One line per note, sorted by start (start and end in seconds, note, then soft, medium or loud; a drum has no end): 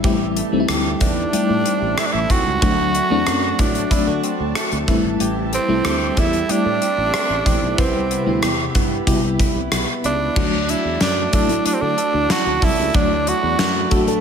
0.00 2.58 G3 medium
0.00 0.42 G3 medium
0.00 2.58 E5 medium
0.00 closed hi-hat medium
0.04 0.40 A1 loud
0.04 2.62 E3 medium
0.04 0.42 A3 medium
0.04 0.43 C4 medium
0.04 0.43 E4 medium
0.04 0.68 G4 medium
0.04 7.74 A5 medium
0.04 kick loud
0.36 1.01 A3 medium
0.36 closed hi-hat medium
0.52 0.65 C2 medium
0.52 1.16 G3 medium
0.52 1.16 A3 medium
0.52 1.17 C4 medium
0.52 0.59 D#4 medium
0.60 1.20 E4 medium
0.68 0.93 D2 medium
0.68 1.32 G4 medium
0.68 cross-stick loud
0.68 closed hi-hat medium
1.01 1.25 E2 medium
1.01 1.97 A3 medium
1.01 2.00 D4 medium
1.01 kick medium
1.01 closed hi-hat medium
1.33 2.35 G3 medium
1.33 2.35 A3 medium
1.33 2.35 C4 medium
1.33 2.36 E4 medium
1.33 2.62 G4 medium
1.33 muted fretless electric bass stroke soft
1.33 closed hi-hat medium
1.49 1.61 A2 medium
1.66 2.30 C4 medium
1.66 closed hi-hat medium
1.82 1.94 A1 medium
1.98 2.62 A3 medium
1.98 2.07 E4 medium
1.98 cross-stick loud
1.98 closed hi-hat medium
2.06 2.14 D4 medium
2.12 2.26 A1 medium
2.12 2.32 E4 medium
2.30 2.42 C2 medium
2.30 3.30 C4 medium
2.30 3.61 F#4 loud
2.30 kick medium
2.30 closed hi-hat medium
2.46 2.58 C#2 medium
2.62 2.98 D2 loud
2.62 3.00 F#3 medium
2.62 2.94 A3 medium
2.62 3.01 A3 medium
2.62 3.01 C4 medium
2.62 3.01 D4 medium
2.62 4.86 F#4 medium
2.62 3.26 F#4 medium
2.62 4.86 D5 medium
2.62 kick loud
2.62 closed hi-hat medium
2.95 3.59 A3 medium
2.95 closed hi-hat medium
3.10 3.23 E2 medium
3.10 3.74 F#3 medium
3.10 3.74 A3 medium
3.10 3.75 C4 medium
3.10 3.75 D4 loud
3.26 3.51 F#2 medium
3.26 3.91 F#4 medium
3.26 cross-stick loud
3.26 closed hi-hat medium
3.59 3.83 A2 medium
3.59 4.55 A3 medium
3.59 4.24 D4 medium
3.59 kick medium
3.59 closed hi-hat medium
3.75 closed hi-hat medium
3.91 4.88 F#3 medium
3.91 4.87 A3 medium
3.91 4.87 C4 medium
3.91 4.88 D4 medium
3.91 4.07 E4 medium
3.91 muted fretless electric bass stroke soft
3.91 kick medium
3.91 closed hi-hat medium
4.07 4.19 D3 loud
4.07 4.94 F#4 medium
4.23 6.81 C4 medium
4.23 closed hi-hat medium
4.40 4.52 D2 medium
4.55 5.24 A3 medium
4.55 cross-stick loud
4.55 closed hi-hat medium
4.72 4.84 D2 medium
4.72 closed hi-hat soft
4.88 5.00 A1 medium
4.88 5.20 E3 medium
4.88 5.52 G3 medium
4.88 5.53 A3 medium
4.88 5.53 C4 medium
4.88 5.53 E4 medium
4.88 10.32 G4 medium
4.88 10.32 E5 medium
4.88 kick medium
4.88 closed hi-hat medium
5.04 5.16 G#1 medium
5.20 5.56 A1 medium
5.20 8.70 E3 medium
5.20 5.84 G4 medium
5.20 closed hi-hat medium
5.53 6.16 A3 medium
5.53 6.20 C4 medium
5.53 closed hi-hat medium
5.68 5.81 C2 medium
5.68 6.32 G3 medium
5.68 6.32 A3 medium
5.68 6.33 C4 medium
5.68 6.33 E4 medium
5.85 6.09 D2 medium
5.85 6.49 G4 medium
5.85 cross-stick loud
5.85 closed hi-hat medium
6.17 6.41 E2 medium
6.17 7.13 A3 medium
6.17 6.52 E4 loud
6.17 kick medium
6.17 closed hi-hat medium
6.33 closed hi-hat soft
6.49 7.51 G3 medium
6.49 7.51 A3 medium
6.49 7.52 C4 medium
6.49 7.79 D4 medium
6.49 7.52 E4 medium
6.49 7.79 G4 medium
6.49 muted fretless electric bass stroke soft
6.49 closed hi-hat medium
6.65 6.77 A2 medium
6.81 7.46 C4 medium
6.81 closed hi-hat medium
6.97 7.10 A1 medium
7.14 7.78 A3 medium
7.14 cross-stick loud
7.14 closed hi-hat medium
7.30 7.42 A1 medium
7.46 7.58 A#1 medium
7.46 8.14 C4 medium
7.46 kick medium
7.46 closed hi-hat medium
7.62 7.74 B1 medium
7.78 8.15 C2 medium
7.78 8.17 C3 medium
7.78 8.16 G3 medium
7.78 8.10 B3 medium
7.78 8.39 C4 medium
7.78 8.17 E4 medium
7.78 8.42 G4 medium
7.78 8.17 B4 medium
7.78 10.34 B5 medium
7.78 kick loud
7.78 closed hi-hat medium
8.11 8.74 B3 medium
8.11 closed hi-hat medium
8.26 8.39 D2 medium
8.26 8.91 C3 medium
8.26 8.90 G3 medium
8.26 8.90 B3 medium
8.26 8.91 E4 medium
8.42 8.67 E2 medium
8.42 9.06 G4 medium
8.42 cross-stick loud
8.42 closed hi-hat medium
8.75 8.99 G2 medium
8.75 9.70 B3 medium
8.75 kick medium
8.75 closed hi-hat medium
9.07 9.19 B2 medium
9.07 10.10 C3 medium
9.07 10.09 G3 medium
9.07 10.09 B3 medium
9.07 10.10 E4 medium
9.07 10.43 G4 medium
9.07 kick medium
9.07 closed hi-hat medium
9.23 9.36 C2 medium
9.40 10.03 E4 medium
9.40 kick medium
9.40 closed hi-hat medium
9.55 9.68 C2 medium
9.72 9.84 B1 medium
9.72 10.43 B3 medium
9.72 cross-stick loud
9.72 closed hi-hat medium
10.04 10.28 C#2 medium
10.04 10.71 D4 medium
10.04 10.43 E4 medium
10.04 closed hi-hat medium
10.36 10.73 D2 loud
10.36 11.13 F#3 medium
10.36 12.93 F#3 medium
10.36 11.13 A3 medium
10.36 11.13 D4 medium
10.36 14.21 F#4 medium
10.36 11.13 F#4 medium
10.36 14.21 D5 medium
10.36 12.92 A5 medium
10.36 14.21 D6 medium
10.36 kick loud
10.36 crash medium
10.68 11.64 D4 medium
10.68 11.02 E4 medium
10.68 closed hi-hat medium
10.85 10.97 E2 medium
11.01 11.25 F#2 medium
11.01 13.58 A3 medium
11.01 11.32 D4 medium
11.01 snare loud
11.01 closed hi-hat medium
11.33 11.57 A2 medium
11.33 11.46 F#3 medium
11.33 11.46 A3 medium
11.33 11.46 D4 medium
11.33 11.64 D4 medium
11.33 11.46 E4 medium
11.33 11.96 A4 medium
11.33 kick medium
11.33 closed hi-hat medium
11.49 12.51 F#3 medium
11.49 12.51 A3 medium
11.49 12.52 D4 medium
11.49 12.52 E4 medium
11.49 closed hi-hat medium
11.65 12.29 D4 medium
11.65 11.75 D4 medium
11.65 muted fretless electric bass stroke soft
11.65 closed hi-hat medium
11.74 11.82 C4 medium
11.81 11.94 D3 medium
11.81 12.33 D4 medium
11.98 12.61 A4 medium
11.98 closed hi-hat medium
12.14 12.26 D2 medium
12.30 13.26 D4 medium
12.30 12.65 F#4 loud
12.30 snare loud
12.30 closed hi-hat medium
12.46 12.58 D2 medium
12.62 12.74 C2 medium
12.62 12.97 E4 medium
12.62 13.90 A4 medium
12.62 kick medium
12.62 open hi-hat medium
12.78 12.91 C#2 medium
12.94 13.31 D2 medium
12.94 13.71 F#3 medium
12.94 14.21 F#3 medium
12.94 13.71 A3 medium
12.94 13.71 D4 medium
12.94 13.30 D4 loud
12.94 13.71 F#4 medium
12.94 14.21 B5 medium
12.94 kick loud
12.94 closed hi-hat medium
13.27 14.21 D4 medium
13.27 13.92 F#4 loud
13.27 closed hi-hat medium
13.43 13.55 E2 medium
13.59 13.83 F#2 medium
13.59 14.21 A3 medium
13.59 snare loud
13.59 closed hi-hat medium
13.91 14.16 A2 medium
13.91 14.04 F#3 medium
13.91 14.04 A3 medium
13.91 14.04 D4 medium
13.91 14.04 F#4 medium
13.91 14.21 A4 medium
13.91 kick medium
13.91 closed hi-hat medium
14.07 14.21 F#3 medium
14.07 14.21 A3 medium
14.07 14.21 D4 medium
14.07 14.21 A4 medium
14.07 closed hi-hat medium